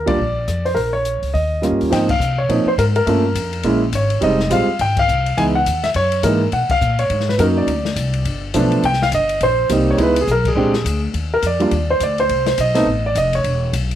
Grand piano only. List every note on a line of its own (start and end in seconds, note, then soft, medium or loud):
0.06 0.17 G3 medium
0.06 0.17 A#3 medium
0.06 0.18 D4 medium
0.06 0.18 F4 medium
0.06 0.67 D5 loud
0.65 0.77 C5 medium
0.75 0.92 A#4 medium
0.93 1.31 C#5 medium
1.34 1.77 D#5 medium
1.62 1.91 G3 medium
1.62 1.89 A#3 medium
1.62 1.92 C#4 medium
1.62 1.92 F4 medium
1.90 2.07 F3 medium
1.90 2.07 A#3 medium
1.90 2.07 C4 medium
1.90 2.08 D#4 medium
1.90 1.98 G5 medium
2.10 2.39 F5 medium
2.38 2.65 C#5 medium
2.49 2.65 F3 medium
2.49 2.65 A#3 medium
2.49 2.65 C4 medium
2.49 2.66 D#4 medium
2.68 2.73 C5 medium
2.79 2.84 A#4 medium
2.96 3.78 A#4 medium
3.07 3.22 A3 medium
3.07 3.23 A#3 medium
3.07 3.23 C#4 medium
3.07 3.23 F4 medium
3.64 3.80 G#3 medium
3.64 3.80 A#3 medium
3.64 3.80 C#4 medium
3.64 3.81 E4 medium
3.95 4.24 C#5 medium
4.21 4.37 G3 medium
4.21 4.38 G#3 medium
4.21 4.38 C4 medium
4.21 4.38 D#4 medium
4.21 4.49 D#5 medium
4.50 4.66 G3 medium
4.50 4.66 G#3 medium
4.50 4.67 C4 medium
4.50 4.67 F4 medium
4.50 4.79 F5 medium
4.81 4.98 G5 loud
4.99 5.39 F5 loud
5.37 5.53 E3 medium
5.37 5.53 G#3 medium
5.37 5.54 B3 medium
5.37 5.54 D#4 medium
5.37 5.43 G#5 medium
5.55 5.82 F#5 loud
5.84 5.89 E5 medium
5.96 6.22 C#5 loud
6.23 6.39 E3 medium
6.23 6.39 G#3 medium
6.23 6.39 A#3 medium
6.23 6.40 D#4 medium
6.23 6.45 A#4 medium
6.53 6.71 F#5 medium
6.71 7.00 F5 loud
6.99 7.28 C#5 medium
7.29 7.34 B4 medium
7.38 7.67 F#3 medium
7.38 7.68 A#3 medium
7.38 7.68 C#4 medium
7.38 7.68 D#4 medium
7.38 7.45 A#4 medium
7.58 8.39 D5 medium
8.54 8.83 F3 medium
8.54 8.83 A3 medium
8.54 8.84 B3 medium
8.54 8.84 D4 medium
8.85 9.02 G5 loud
9.03 9.07 F5 loud
9.15 9.40 D#5 loud
9.43 9.69 C5 loud
9.70 9.98 G3 medium
9.70 9.99 A#3 medium
9.70 9.99 C4 medium
9.70 9.97 D#4 medium
9.91 9.95 C#5 medium
9.98 10.14 G#3 medium
9.98 10.14 B3 medium
9.98 10.14 D#4 medium
9.98 10.15 E4 medium
10.03 10.18 B4 medium
10.21 10.30 G#4 medium
10.31 10.47 A#4 medium
10.48 11.00 G#4 medium
10.56 10.71 G#3 medium
10.56 10.72 C4 medium
10.56 10.72 D4 medium
10.56 10.72 G4 medium
11.34 11.44 A#4 medium
11.47 11.88 D5 medium
11.60 11.70 G3 medium
11.60 11.70 A#3 medium
11.60 11.71 D4 medium
11.60 11.71 F4 medium
11.90 12.01 C5 medium
12.03 12.19 D5 medium
12.20 12.46 C5 medium
12.47 12.58 C5 medium
12.61 13.02 D#5 medium
12.74 12.85 A3 medium
12.74 12.85 B3 medium
12.74 12.85 C4 medium
12.74 12.86 D#4 medium
13.06 13.16 D5 medium
13.18 13.33 D#5 medium
13.35 13.72 C#5 medium